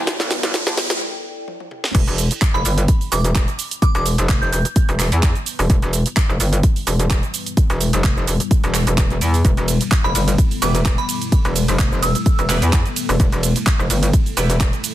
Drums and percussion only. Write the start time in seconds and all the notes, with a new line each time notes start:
0.07 kick, snare, closed hi-hat
0.20 snare
0.31 snare, open hi-hat
0.43 snare, closed hi-hat
0.54 kick, snare, closed hi-hat
0.67 snare, closed hi-hat
0.77 snare, open hi-hat
0.90 snare, closed hi-hat
1.48 high tom
1.60 high tom
1.71 mid tom
1.84 snare
1.95 kick, closed hi-hat, crash, shaker
2.07 closed hi-hat, shaker
2.18 open hi-hat, shaker
2.31 closed hi-hat, shaker
2.42 kick, clap, closed hi-hat, shaker
2.55 shaker
2.65 open hi-hat, shaker
2.78 closed hi-hat, shaker
2.88 kick, closed hi-hat, shaker
3.01 open hi-hat, shaker
3.12 open hi-hat, shaker
3.25 closed hi-hat, shaker
3.35 kick, clap, closed hi-hat, shaker
3.48 closed hi-hat, shaker
3.59 open hi-hat, shaker
3.71 closed hi-hat, shaker
3.82 kick, closed hi-hat, shaker
3.95 closed hi-hat, shaker
4.06 open hi-hat, shaker
4.18 closed hi-hat, shaker
4.29 kick, clap, closed hi-hat, shaker
4.42 shaker
4.53 open hi-hat, shaker
4.65 closed hi-hat, shaker
4.76 kick, closed hi-hat, shaker
4.89 closed hi-hat, shaker
4.99 clap, open hi-hat, shaker
5.12 closed hi-hat, shaker
5.23 kick, clap, closed hi-hat, shaker
5.35 closed hi-hat, shaker
5.46 open hi-hat, shaker
5.59 open hi-hat, shaker
5.70 kick, closed hi-hat, shaker
5.82 closed hi-hat, shaker
5.93 open hi-hat, shaker
6.06 closed hi-hat, shaker
6.17 kick, clap, closed hi-hat, shaker
6.30 shaker
6.40 open hi-hat, shaker
6.53 closed hi-hat, shaker
6.63 kick, closed hi-hat, shaker
6.76 open hi-hat, shaker
6.87 open hi-hat, shaker
7.00 closed hi-hat, shaker
7.10 kick, clap, closed hi-hat, shaker
7.23 closed hi-hat, shaker
7.34 open hi-hat, shaker
7.46 closed hi-hat, shaker
7.57 kick, closed hi-hat, shaker
7.70 closed hi-hat, shaker
7.81 open hi-hat, shaker
7.93 closed hi-hat, shaker
8.04 kick, clap, closed hi-hat, shaker
8.17 shaker
8.27 open hi-hat, shaker
8.40 closed hi-hat, shaker
8.51 kick, closed hi-hat, shaker
8.64 closed hi-hat, shaker
8.74 clap, open hi-hat, shaker
8.87 closed hi-hat, shaker
8.98 kick, clap, closed hi-hat, shaker
9.10 closed hi-hat, shaker
9.21 open hi-hat, shaker
9.34 open hi-hat, shaker
9.45 kick, closed hi-hat, shaker
9.57 closed hi-hat, shaker
9.68 open hi-hat, ride, shaker
9.81 closed hi-hat, shaker
9.92 kick, clap, closed hi-hat, shaker
10.05 shaker
10.15 open hi-hat, ride, shaker
10.28 closed hi-hat, shaker
10.38 kick, closed hi-hat, shaker
10.51 open hi-hat, shaker
10.62 open hi-hat, ride, shaker
10.75 closed hi-hat, shaker
10.85 kick, clap, closed hi-hat, shaker
10.98 closed hi-hat, shaker
11.09 open hi-hat, ride, shaker
11.22 closed hi-hat, shaker
11.32 kick, closed hi-hat, shaker
11.45 closed hi-hat, shaker
11.56 open hi-hat, ride, shaker
11.68 closed hi-hat, shaker
11.79 kick, clap, closed hi-hat, shaker
11.92 shaker
12.03 open hi-hat, ride, shaker
12.15 closed hi-hat, shaker
12.26 kick, closed hi-hat, shaker
12.39 closed hi-hat, shaker
12.49 clap, open hi-hat, ride, shaker
12.62 closed hi-hat, shaker
12.73 kick, clap, closed hi-hat, shaker
12.86 closed hi-hat, shaker
12.96 open hi-hat, ride, shaker
13.09 open hi-hat, shaker
13.20 kick, closed hi-hat, shaker
13.32 closed hi-hat, shaker
13.43 open hi-hat, ride, shaker
13.56 closed hi-hat, shaker
13.67 kick, clap, closed hi-hat, shaker
13.80 shaker
13.90 open hi-hat, ride, shaker
14.03 closed hi-hat, shaker
14.13 kick, closed hi-hat, shaker
14.26 open hi-hat, shaker
14.37 open hi-hat, ride, shaker
14.50 closed hi-hat, shaker
14.60 kick, clap, closed hi-hat, shaker
14.73 closed hi-hat, shaker
14.84 open hi-hat, ride, shaker